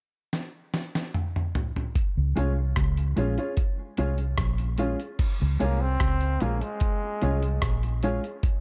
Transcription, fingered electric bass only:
2.17 C#2
2.37 C2
2.78 C#2
3.18 A#1
3.99 C2
4.39 A#1
5.42 C#2
5.61 C2
6.01 C#2
6.42 A#1
7.23 C2
7.63 A#1

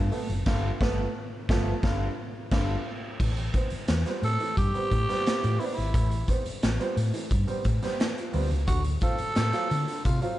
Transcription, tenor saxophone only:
4.24 A4
4.58 G4
5.60 E4
5.65 D4
5.73 E4
8.67 F#4
9.03 A4
10.05 F4

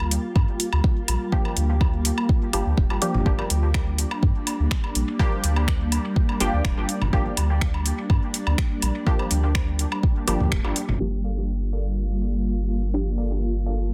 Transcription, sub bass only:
Already playing: D2
0.36 G2
0.73 D2
1.08 A#1
1.57 D2
2.53 G1
2.66 D2
2.78 D1
2.90 G1
3.15 G1
3.26 G1
3.50 D2
4.23 G2
4.60 D2
4.95 A#1
5.44 D2
6.40 G1
6.53 D2
6.65 D1
6.77 G1
7.02 G1
7.13 G1
7.37 D2
8.10 G2
8.47 D2
8.82 A#1
9.31 D2
10.28 G1
10.40 D2
10.52 D1
10.64 G1
10.89 G1
11.00 G1

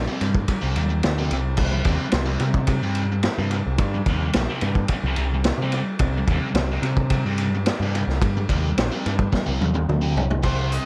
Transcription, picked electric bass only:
0.21 G2
0.63 C2
0.76 D#2
1.04 D2
1.31 C2
1.58 C2
1.85 D#2
2.13 C2
2.40 C3
2.82 G2
3.38 G2
3.66 C2
3.78 G2
4.06 D#2
4.35 A#1
4.62 G2
5.03 C2
5.17 C2
5.58 C3
6.00 C2
6.27 D#2
6.54 C2
6.82 C3
7.25 G2
7.80 G2
8.07 C2
8.22 G2
8.49 D#2
8.78 A#1
9.06 G2
9.48 C2
9.61 D#2
9.89 D2
10.16 C2
10.44 C2

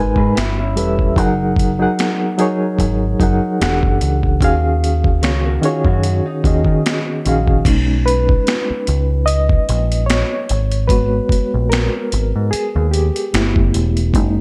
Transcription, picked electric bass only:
Already playing: G#1
0.17 G#2
0.37 G1
0.78 E1
1.17 F#1
2.80 G#1
3.21 F#1
3.62 E1
3.84 F#1
4.02 C#2
4.42 D#2
5.24 C#2
5.85 F#2
6.45 D#2
6.66 D#3
7.26 A#1
7.66 B1
8.70 muted picked electric bass stroke
8.88 C#2
9.69 A#1
10.51 G#1
11.30 muted picked electric bass stroke
11.54 A#1
12.13 G#1
12.36 G#2
12.53 muted picked electric bass stroke
12.76 D#2
13.34 G1
13.57 F#1
13.75 E1
14.15 F#1

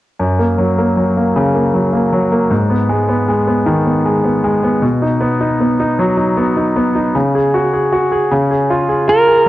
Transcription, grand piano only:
0.19 F#2
0.39 A#3
0.58 F#3
0.78 A#3
0.97 F#3
1.17 A#3
1.36 C#3
1.55 A#3
1.74 F#3
1.93 A#3
2.13 F#3
2.32 A#3
2.51 G#2
2.70 B3
2.89 G#3
3.08 B3
3.28 G#3
3.47 B3
3.66 D#3
3.86 B3
4.05 G#3
4.24 B3
4.44 G#3
4.63 B3
4.82 B2
5.02 D#4
5.21 B3
5.41 D#4
5.60 B3
5.80 D#4
5.99 F#3
6.17 D#4
6.37 B3
6.57 D#4
6.76 B3
6.95 D#4
7.15 C#3
7.35 G#4
7.54 F#4
7.73 G#4
7.92 F#4
8.12 G#4
8.31 C#3
8.51 G#4
8.70 F4
8.89 G#4
9.08 F4
9.27 G#4

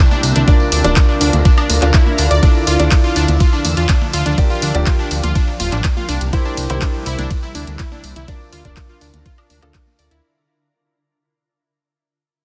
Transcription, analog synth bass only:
0.23 C2
0.36 C2
0.72 D2
0.84 D1
1.21 D2
1.33 D2
1.70 D2
1.82 D2
2.18 D2
2.31 D2
2.67 D2
2.80 D2
3.16 D2
3.28 D2
3.65 E2
3.77 E2
4.13 D2
4.26 D2
4.62 D2
4.75 D1
5.11 D2
5.23 D2
5.60 D1
5.72 A1
6.09 C2
6.21 C2
6.57 C2
6.70 C2
7.06 C2
7.19 C2
7.55 D2
7.67 D2
8.04 C2
8.16 C2
8.53 D2
8.65 D1
9.01 D2
9.14 D2
9.50 D2
9.63 D2
9.99 D2
10.11 D2

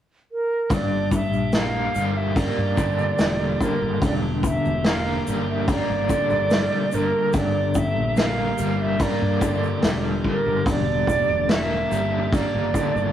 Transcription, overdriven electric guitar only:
0.71 G2
1.54 A#3
1.95 G3
2.36 A#3
2.77 D3
3.19 G3
3.62 D3
4.03 G2
4.86 A#3
5.27 G3
5.69 A#3
6.09 D3
6.52 G3
6.93 D3
7.34 G2
8.17 A#3
8.58 G3
8.99 A#3
9.40 D3
9.83 G3
10.26 D3
10.66 G2
11.51 A#3
11.93 G3
12.34 A#3
12.75 D3

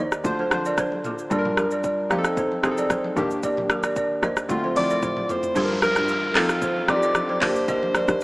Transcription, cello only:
0.00 D#2
0.25 D2
0.51 F2
1.31 G2
2.11 F2
2.64 C3
3.17 D#2
4.23 D#2
4.49 D2
4.76 F2
5.56 G2
5.96 G2
6.35 F2
6.89 F2
7.42 D#2
8.08 D#2

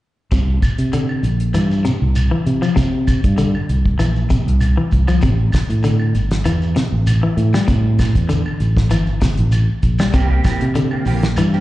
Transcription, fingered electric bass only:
0.32 C2
0.78 C3
1.23 A#1
1.54 G2
2.02 C2
2.46 C3
2.77 C3
3.24 G2
3.70 C2
4.00 A#1
4.46 C2
4.93 C2
5.23 A1
5.69 A2
6.15 G1
6.45 E2
6.92 A1
7.37 A2
7.69 A2
8.15 E2
8.60 A1
8.91 G1
9.39 A1
9.84 A#1
10.14 C2
10.62 C3
11.06 A#1
11.37 G2

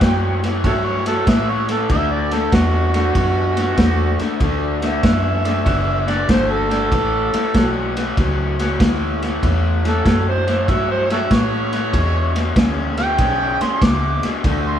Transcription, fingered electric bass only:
0.01 F#2
0.64 G2
1.27 A2
1.90 D2
2.53 E2
3.15 F#2
3.78 E2
4.21 muted fingered electric bass stroke
4.41 D2
5.04 F#2
5.66 F#1
6.29 G1
6.92 A1
7.34 muted fingered electric bass stroke
7.55 B1
8.18 C#2
8.80 D2
9.43 E2
10.06 F#2
10.68 G2
11.31 A2
11.94 E2
12.56 D2
13.19 B1
13.61 muted fingered electric bass stroke
13.82 C#2
14.24 muted fingered electric bass stroke
14.45 D2

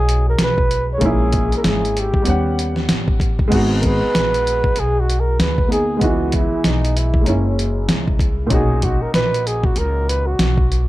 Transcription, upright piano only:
Already playing: G#3 C#4 D#4 F#4
0.98 G#3 A#3
1.03 C#4 E4
2.22 G3 B3
2.27 C#4 F#5
3.48 G#3 B3
3.53 D#4 F#4
5.68 A#3 B3 D#4 G#4
5.97 G#3 B3
6.02 E3 D#5
7.21 G#3 A#3
7.26 C#4 E4
8.47 A#2 C#4
8.51 D#4 F#4

